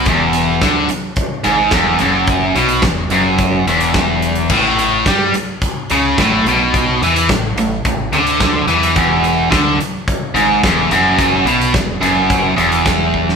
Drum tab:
CC |----------------|----------------|x---------------|----------------|
HH |x-x-x-x-x-x-x-x-|x-xxx-x-x-xxx-xx|--x-x-x-x-x-x-x-|x-xxx-x-x-xxx-xx|
SD |----o-------o---|----o-------o---|----o-------o---|----o-------o---|
BD |o---o---o---o---|o---o---o---o---|o---o---o---o---|o---o---o---o---|

CC |----------------|----------------|
HH |x-x-x-x-x-x-x-x-|x-xxx-x-x-xxx---|
SD |----o-------o---|----o-------o--o|
BD |o---o---o---o---|o---o---o---o-o-|